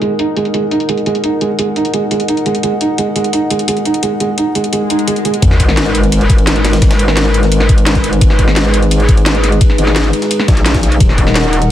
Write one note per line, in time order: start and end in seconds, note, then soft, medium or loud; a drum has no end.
0.00 0.09 G#3 medium
0.00 5.38 D#4 medium
0.00 5.38 A#4 medium
0.00 5.38 D#5 medium
0.00 5.39 F#5 medium
0.00 closed hi-hat medium
0.19 0.30 D#4 loud
0.19 closed hi-hat medium
0.36 0.44 G#3 loud
0.36 closed hi-hat medium
0.45 closed hi-hat soft
0.54 0.61 G#3 medium
0.54 closed hi-hat medium
0.71 0.82 D#4 loud
0.71 closed hi-hat medium
0.80 closed hi-hat soft
0.89 0.96 G#3 loud
0.89 closed hi-hat medium
0.98 closed hi-hat soft
1.06 1.13 G#3 loud
1.06 closed hi-hat medium
1.15 closed hi-hat soft
1.24 1.34 D#4 loud
1.24 closed hi-hat medium
1.41 1.48 G#3 medium
1.41 closed hi-hat medium
1.59 1.66 G#3 loud
1.59 closed hi-hat medium
1.76 1.87 D#4 loud
1.76 closed hi-hat medium
1.85 closed hi-hat soft
1.94 2.01 G#3 medium
1.94 closed hi-hat medium
2.11 2.18 G#3 medium
2.11 closed hi-hat medium
2.20 closed hi-hat soft
2.28 2.39 D#4 loud
2.28 closed hi-hat medium
2.37 closed hi-hat soft
2.46 2.53 G#3 loud
2.46 closed hi-hat medium
2.55 closed hi-hat soft
2.63 2.70 G#3 loud
2.63 closed hi-hat medium
2.81 2.91 D#4 loud
2.81 closed hi-hat medium
2.98 3.05 G#3 loud
2.98 closed hi-hat medium
3.16 3.23 G#3 loud
3.16 closed hi-hat medium
3.24 closed hi-hat soft
3.33 3.44 D#4 loud
3.33 closed hi-hat medium
3.50 3.58 G#3 loud
3.50 closed hi-hat medium
3.59 closed hi-hat soft
3.68 3.75 G#3 loud
3.68 closed hi-hat loud
3.77 closed hi-hat soft
3.85 3.96 D#4 loud
3.85 closed hi-hat medium
3.94 closed hi-hat soft
4.03 4.10 G#3 loud
4.03 closed hi-hat medium
4.20 4.27 G#3 loud
4.20 closed hi-hat medium
4.38 4.48 D#4 loud
4.38 closed hi-hat medium
4.55 4.62 G#3 loud
4.55 closed hi-hat medium
4.64 closed hi-hat soft
4.73 4.80 G#3 medium
4.73 closed hi-hat medium
4.73 swell medium
4.90 5.01 D#4 loud
4.90 closed hi-hat medium
4.99 closed hi-hat soft
5.08 5.15 G#3 loud
5.08 closed hi-hat loud
5.16 closed hi-hat soft
5.25 5.32 G#3 loud
5.25 closed hi-hat medium
5.34 closed hi-hat soft
5.42 6.81 G#1 loud
5.42 10.97 G#3 medium
5.42 11.71 D#4 medium
5.42 8.19 A#4 medium
5.42 10.97 B4 medium
5.42 kick loud
5.42 closed hi-hat medium
5.42 ride medium
5.42 sub drop medium
5.51 snare soft
5.60 kick medium
5.60 closed hi-hat medium
5.60 ride medium
5.69 snare soft
5.69 snare medium
5.77 snare loud
5.77 closed hi-hat medium
5.77 ride medium
5.86 ride soft
5.95 closed hi-hat medium
5.95 ride medium
6.03 closed hi-hat soft
6.12 closed hi-hat medium
6.12 ride medium
6.21 ride soft
6.30 kick loud
6.30 closed hi-hat medium
6.30 ride medium
6.38 closed hi-hat soft
6.38 ride soft
6.47 snare loud
6.47 closed hi-hat loud
6.47 ride medium
6.56 snare soft
6.56 closed hi-hat soft
6.65 snare loud
6.65 snare soft
6.65 closed hi-hat medium
6.65 ride medium
6.73 snare loud
6.73 closed hi-hat soft
6.73 ride medium
6.82 8.20 G#1 loud
6.82 kick loud
6.82 snare loud
6.82 closed hi-hat loud
6.82 ride medium
6.91 snare loud
6.91 snare soft
6.91 ride medium
6.99 closed hi-hat medium
6.99 ride medium
7.08 snare medium
7.17 snare loud
7.17 closed hi-hat medium
7.17 ride medium
7.26 snare soft
7.34 closed hi-hat medium
7.34 ride medium
7.43 snare soft
7.43 closed hi-hat soft
7.52 closed hi-hat medium
7.52 ride medium
7.60 snare medium
7.60 ride soft
7.69 kick loud
7.69 closed hi-hat medium
7.69 ride medium
7.78 closed hi-hat soft
7.78 ride soft
7.86 snare loud
7.86 closed hi-hat loud
7.86 ride medium
7.95 kick medium
7.95 closed hi-hat soft
8.04 closed hi-hat medium
8.04 ride medium
8.13 closed hi-hat soft
8.21 9.60 G#1 medium
8.21 10.98 G#4 medium
8.21 kick loud
8.21 closed hi-hat medium
8.21 ride medium
8.30 snare soft
8.39 kick medium
8.39 closed hi-hat medium
8.39 ride medium
8.48 snare soft
8.48 snare medium
8.56 snare loud
8.56 closed hi-hat medium
8.56 ride medium
8.65 ride soft
8.74 closed hi-hat medium
8.74 ride medium
8.82 closed hi-hat soft
8.91 closed hi-hat medium
8.91 ride medium
9.00 ride soft
9.09 kick loud
9.09 closed hi-hat medium
9.09 ride medium
9.17 closed hi-hat soft
9.17 ride soft
9.26 snare loud
9.26 closed hi-hat medium
9.26 ride medium
9.35 snare soft
9.35 closed hi-hat soft
9.44 snare soft
9.44 closed hi-hat medium
9.44 ride medium
9.52 closed hi-hat soft
9.61 kick loud
9.61 closed hi-hat medium
9.61 ride medium
9.70 snare soft
9.78 10.12 G#1 loud
9.78 closed hi-hat medium
9.78 ride medium
9.87 snare medium
9.96 snare loud
9.96 closed hi-hat medium
9.96 ride medium
10.05 snare soft
10.13 closed hi-hat medium
10.13 ride medium
10.22 snare soft
10.22 closed hi-hat soft
10.31 closed hi-hat medium
10.31 ride medium
10.40 snare medium
10.48 10.99 A#1 loud
10.48 kick loud
10.48 snare loud
10.48 closed hi-hat medium
10.48 ride medium
10.57 snare soft
10.57 closed hi-hat soft
10.66 snare loud
10.66 closed hi-hat medium
10.66 ride medium
10.74 kick medium
10.74 snare loud
10.74 closed hi-hat soft
10.74 ride medium
10.83 snare soft
10.83 closed hi-hat medium
10.92 closed hi-hat soft
10.92 ride medium
11.00 11.71 D#1 loud
11.00 11.71 A#4 medium
11.00 11.71 D#5 medium
11.00 11.71 F#5 medium
11.00 kick loud
11.00 closed hi-hat medium
11.00 ride medium
11.09 snare soft
11.18 kick medium
11.18 closed hi-hat medium
11.18 ride medium
11.27 snare soft
11.27 snare medium
11.35 snare loud
11.35 closed hi-hat medium
11.35 ride medium
11.44 ride soft
11.53 closed hi-hat medium
11.53 ride medium
11.62 closed hi-hat soft